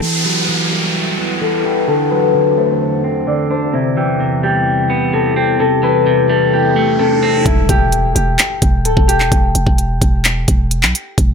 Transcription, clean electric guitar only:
0.02 0.47 E3 medium
0.25 1.41 F#3 medium
0.48 1.40 E3 medium
0.71 1.88 G3 medium
1.18 1.88 B3 medium
1.41 1.88 E3 medium
1.65 1.88 E4 medium
1.88 2.33 D3 medium
2.11 3.27 F#3 medium
2.34 3.26 D3 medium
2.57 3.74 A3 medium
3.04 3.50 C4 medium
3.27 3.74 D3 medium
3.50 3.74 D4 medium
3.74 4.19 C3 medium
3.97 5.13 E3 medium
4.20 5.12 C3 medium
4.43 5.60 G3 medium
4.90 5.36 B3 medium
5.13 5.59 C3 medium
5.36 5.60 C4 medium
5.60 6.05 C3 medium
5.83 6.99 E3 medium
6.06 6.98 C3 medium
6.29 6.76 G3 medium
6.76 7.46 A3 medium
6.99 7.46 C3 medium
7.23 7.46 C4 medium

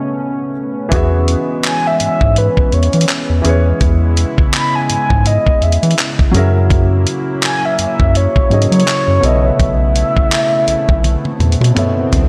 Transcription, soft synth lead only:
0.00 0.56 D#5 loud
1.66 1.88 G#5 loud
1.87 2.01 E5 loud
2.02 2.39 E5 loud
2.38 2.75 B4 medium
2.74 3.09 C#5 medium
4.55 4.77 B5 loud
4.75 4.90 G#5 loud
4.91 5.28 G#5 loud
5.27 5.65 D#5 medium
5.63 5.99 E5 medium
7.44 7.67 G#5 loud
7.65 7.80 E5 loud
7.80 8.18 E5 loud
8.17 8.73 C#5 loud
8.74 9.27 C#5 medium
9.25 9.47 D#5 medium
9.46 11.77 E5 loud

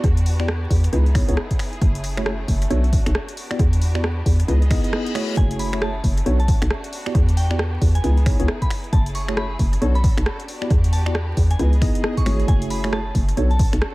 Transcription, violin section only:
0.00 1.80 B3 medium
0.00 0.91 D4 medium
0.00 0.91 F#4 medium
0.00 0.92 G4 medium
0.93 1.81 D#4 medium
0.93 2.69 E4 medium
0.93 2.69 G#4 medium
1.82 3.36 A3 medium
1.82 3.36 C#4 medium
2.70 3.36 D4 medium
2.70 3.36 F#4 medium
3.37 5.35 B3 medium
3.37 4.47 D4 medium
3.37 4.47 F#4 medium
3.37 4.47 G4 medium
4.48 6.24 G#4 medium
4.48 5.36 D#5 medium
5.37 6.91 A3 medium
5.37 6.91 C#4 medium
5.37 6.25 E4 medium
6.26 8.02 D4 medium
6.26 8.02 F#4 medium
6.92 8.91 B3 medium
6.92 8.03 G4 medium
8.04 8.92 D#4 medium
8.04 9.80 E4 medium
8.04 8.91 G#4 medium
8.92 9.81 A3 medium
8.92 10.47 C#4 medium
8.92 9.81 G#4 medium
9.82 11.58 D4 medium
9.82 10.47 F#4 medium
9.82 10.48 A4 medium
10.48 12.46 B3 medium
10.48 11.58 F#4 medium
10.48 11.58 G4 medium
11.59 13.35 G#4 medium
11.59 12.47 D#5 medium
12.48 13.36 A3 medium
12.48 13.36 C#4 medium
13.37 13.95 C#4 medium
13.37 13.95 D4 medium
13.37 13.95 F#4 medium
13.37 13.95 A4 medium

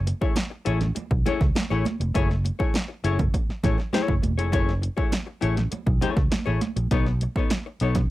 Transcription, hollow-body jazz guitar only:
0.07 muted hollow-body jazz guitar stroke soft
0.21 0.34 A3 medium
0.21 0.35 E4 medium
0.21 0.36 G#4 medium
0.21 0.35 C#5 medium
0.36 muted hollow-body jazz guitar stroke soft
0.50 muted hollow-body jazz guitar stroke soft
0.65 0.85 A3 medium
0.65 0.80 E4 medium
0.65 0.80 G#4 medium
0.65 0.79 C#5 medium
0.80 muted hollow-body jazz guitar stroke soft
0.95 muted hollow-body jazz guitar stroke soft
1.11 muted hollow-body jazz guitar stroke medium
1.26 1.45 A3 medium
1.26 1.41 E4 medium
1.26 1.40 G#4 medium
1.26 1.40 C#5 medium
1.41 muted hollow-body jazz guitar stroke soft
1.55 muted hollow-body jazz guitar stroke soft
1.70 1.84 A3 medium
1.70 1.85 E4 medium
1.70 1.85 G#4 medium
1.70 1.86 C#5 medium
1.86 muted hollow-body jazz guitar stroke soft
2.00 muted hollow-body jazz guitar stroke soft
2.14 2.34 A3 medium
2.14 2.30 E4 medium
2.14 2.29 G#4 medium
2.14 2.29 C#5 medium
2.30 muted hollow-body jazz guitar stroke soft
2.44 muted hollow-body jazz guitar stroke soft
2.59 2.73 A3 soft
2.59 2.74 E4 medium
2.59 2.74 G#4 medium
2.59 2.74 C#5 medium
2.74 muted hollow-body jazz guitar stroke soft
2.88 muted hollow-body jazz guitar stroke soft
3.04 3.23 A3 medium
3.04 3.19 E4 medium
3.04 3.19 G#4 medium
3.04 3.18 C#5 medium
3.19 muted hollow-body jazz guitar stroke soft
3.34 muted hollow-body jazz guitar stroke medium
3.63 3.79 A3 medium
3.63 3.78 E4 medium
3.63 3.78 G#4 medium
3.63 3.77 C#5 medium
3.78 muted hollow-body jazz guitar stroke medium
3.93 4.13 A3 medium
3.93 4.13 E4 loud
3.93 4.14 G#4 loud
3.93 4.14 C#5 loud
4.22 muted hollow-body jazz guitar stroke soft
4.38 4.51 A3 medium
4.38 4.51 E4 medium
4.38 4.52 G#4 medium
4.38 4.52 C#5 medium
4.52 4.72 A3 medium
4.52 4.72 E4 medium
4.52 4.73 G#4 loud
4.52 4.73 C#5 loud
4.82 muted hollow-body jazz guitar stroke soft
4.97 5.11 A3 soft
4.97 5.11 E4 medium
4.97 5.12 G#4 medium
4.97 5.12 C#5 medium
5.12 muted hollow-body jazz guitar stroke soft
5.27 muted hollow-body jazz guitar stroke soft
5.41 5.61 A3 medium
5.41 5.57 E4 medium
5.41 5.56 G#4 medium
5.41 5.55 C#5 medium
5.56 muted hollow-body jazz guitar stroke soft
5.71 muted hollow-body jazz guitar stroke soft
5.86 muted hollow-body jazz guitar stroke medium
6.01 6.21 A3 medium
6.01 6.16 E4 medium
6.01 6.16 G#4 medium
6.01 6.15 C#5 loud
6.16 muted hollow-body jazz guitar stroke soft
6.31 muted hollow-body jazz guitar stroke soft
6.46 6.60 A3 medium
6.46 6.61 E4 medium
6.46 6.61 G#4 medium
6.46 6.61 C#5 medium
6.61 muted hollow-body jazz guitar stroke soft
6.76 muted hollow-body jazz guitar stroke soft
6.91 7.11 B3 medium
6.91 7.06 D#4 medium
6.91 7.05 A4 medium
6.91 7.05 C#5 loud
7.06 muted hollow-body jazz guitar stroke soft
7.22 muted hollow-body jazz guitar stroke soft
7.37 7.50 B3 medium
7.37 7.51 D#4 medium
7.37 7.51 A4 medium
7.37 7.51 C#5 medium
7.52 muted hollow-body jazz guitar stroke soft
7.66 muted hollow-body jazz guitar stroke medium
7.81 8.00 B3 medium
7.81 7.96 D#4 medium
7.81 7.96 A4 medium
7.81 7.95 C#5 medium
7.97 muted hollow-body jazz guitar stroke medium

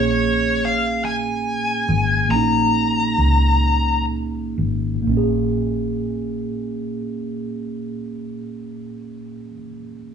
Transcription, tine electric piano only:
0.00 2.23 A#2 medium
0.00 2.24 A#3 medium
0.00 2.26 C#4 medium
0.00 2.28 G#4 medium
2.25 4.94 A#2 medium
2.29 5.01 A#3 medium
2.29 5.03 C#4 soft
2.36 5.05 D#4 medium
4.95 9.46 A#2 medium
5.02 9.50 A#3 medium
5.09 9.53 C#4 medium
5.17 9.57 G#4 medium

